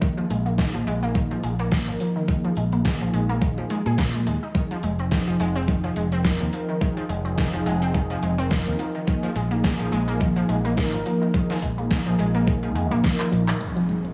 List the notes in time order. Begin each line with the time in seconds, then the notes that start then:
0.01 D#3 F3 A#3 D#4 G#4, kick, closed hi-hat, cabasa, shaker
0.17 F3, closed hi-hat, cabasa
0.30 A#1 G#3, open hi-hat, cabasa, shaker
0.45 F3 A#3 D#4 G#4, closed hi-hat, cabasa, shaker
0.58 D#3, kick, snare, closed hi-hat, cabasa, shaker
0.74 A#1 F3, closed hi-hat, cabasa
0.87 A#1 G#3, open hi-hat, cabasa, shaker
1.03 A#3, closed hi-hat, cabasa, shaker
1.14 D#3, kick, closed hi-hat, cabasa, shaker
1.31 F3, closed hi-hat
1.43 A#1 G#3, open hi-hat, cabasa, shaker
1.58 F3 A#3 D#4 A#4, closed hi-hat, cabasa, shaker
1.72 D#3, kick, snare, closed hi-hat, cabasa, shaker
1.87 G#1 F3, closed hi-hat, cabasa
2.00 F3, open hi-hat, cabasa, shaker
2.15 D#3, cabasa, shaker
2.28 D#3 F3 A#3 D#4 G#4, kick, closed hi-hat, cabasa, shaker
2.44 F3, closed hi-hat, cabasa
2.56 A#1 G#3, open hi-hat, cabasa, shaker
2.72 F3 A#3 D#4 G#4, closed hi-hat, cabasa, shaker
2.85 D#3, kick, snare, closed hi-hat, cabasa, shaker
3.01 A#1 F3, closed hi-hat, cabasa
3.14 A#1 G#3, open hi-hat, cabasa, shaker
3.29 A#3, closed hi-hat, cabasa, shaker
3.41 D#3, kick, closed hi-hat, cabasa, shaker
3.58 F3, closed hi-hat
3.70 G#3, open hi-hat, cabasa, shaker
3.86 A#2 G#4, closed hi-hat, cabasa, shaker
3.98 A#3, kick, snare, closed hi-hat, cabasa, shaker
4.14 F3 G#3 A#3 D#4 G#4, closed hi-hat, cabasa
4.27 D#2 G#3, open hi-hat, cabasa, shaker
4.42 D#4, cabasa, shaker
4.55 D#3 F3 C4 D#4 G#4, kick, closed hi-hat, cabasa, shaker
4.71 F3, closed hi-hat, cabasa
4.83 F1 G#3, open hi-hat, cabasa, shaker
4.98 F3 C4 D#4 G#4, closed hi-hat, cabasa, shaker
5.11 D#3, kick, snare, closed hi-hat, cabasa, shaker
5.27 F1 F3, closed hi-hat, cabasa
5.40 F1 G#3, open hi-hat, cabasa, shaker
5.55 C4, closed hi-hat, cabasa, shaker
5.68 D#3, kick, closed hi-hat, cabasa, shaker
5.84 F3, closed hi-hat
5.96 F1 G#3, open hi-hat, cabasa, shaker
6.11 F3 C4 D#4 A#4, closed hi-hat, cabasa, shaker
6.24 D#3, kick, snare, closed hi-hat, cabasa, shaker
6.40 D#2 F3, closed hi-hat, cabasa
6.53 F3, open hi-hat, cabasa, shaker
6.69 D#3, cabasa, shaker
6.80 D#3 F3 C4 D#4 G#4, kick, closed hi-hat, cabasa, shaker
6.97 F3, closed hi-hat, cabasa
7.09 F1 G#3, open hi-hat, cabasa, shaker
7.24 F3 C4 D#4 G#4, closed hi-hat, cabasa, shaker
7.38 D#3, kick, snare, closed hi-hat, cabasa, shaker
7.53 F1 F3, closed hi-hat, cabasa
7.66 F1 G#3, open hi-hat, cabasa, shaker
7.82 C4, closed hi-hat, cabasa, shaker
7.94 D#3, kick, closed hi-hat, cabasa, shaker
8.10 F3, closed hi-hat
8.22 F1 G#3, open hi-hat, cabasa, shaker
8.37 F3 C4 D#4 A#4, closed hi-hat, cabasa, shaker
8.51 D#3, kick, snare, closed hi-hat, cabasa, shaker
8.66 D#2 F3, closed hi-hat, cabasa
8.79 F3, open hi-hat, cabasa, shaker
8.95 D#3, cabasa, shaker
9.07 D#3 F3 A#3 D#4 G#4, kick, closed hi-hat, cabasa, shaker
9.22 F3, closed hi-hat, cabasa
9.36 A#1 G#3, open hi-hat, cabasa, shaker
9.50 F3 A#3 D#4 G#4, closed hi-hat, cabasa, shaker
9.64 D#3, kick, snare, closed hi-hat, cabasa, shaker
9.79 A#1 F3, closed hi-hat, cabasa
9.92 A#1 G#3, open hi-hat, cabasa, shaker
10.08 A#3, closed hi-hat, cabasa, shaker
10.20 D#3, kick, closed hi-hat, cabasa, shaker
10.36 F3, closed hi-hat
10.49 A#1 G#3, open hi-hat, cabasa, shaker
10.64 F3 A#3 D#4 A#4, closed hi-hat, cabasa, shaker
10.77 D#3, kick, snare, closed hi-hat, cabasa, shaker
10.93 G#1 F3, closed hi-hat, cabasa
11.06 F3, open hi-hat, cabasa, shaker
11.22 D#3, cabasa, shaker
11.34 D#3 F3 A#3 D#4 G#4, kick, closed hi-hat, cabasa, shaker
11.50 F3, snare, closed hi-hat, cabasa
11.62 A#1 G#3, kick, open hi-hat, cabasa, shaker
11.77 F3 A#3 D#4 G#4, closed hi-hat, cabasa, shaker
11.91 D#3, kick, snare, closed hi-hat, cabasa, shaker
12.06 A#1 F3, closed hi-hat, cabasa
12.19 A#1 G#3, open hi-hat, cabasa, shaker
12.34 A#3, closed hi-hat, cabasa, shaker
12.47 D#3, kick, closed hi-hat, cabasa, shaker
12.63 F3, closed hi-hat, cabasa
12.75 F2 G#3, open hi-hat, cabasa, shaker
12.91 A#1 F3 A#3 D#4 A#4, closed hi-hat, cabasa, shaker
13.04 D#3, kick, snare, closed hi-hat, cabasa, shaker
13.19 F3, clap, closed hi-hat, cabasa
13.32 A#1 F3, open hi-hat, cabasa, shaker
13.48 D#3, clap, closed hi-hat, cabasa, shaker
13.59 D#3 F3 C4 D#4 G#4, closed hi-hat, impact
13.76 F3, closed hi-hat
13.89 G#3, closed hi-hat
14.04 C4, closed hi-hat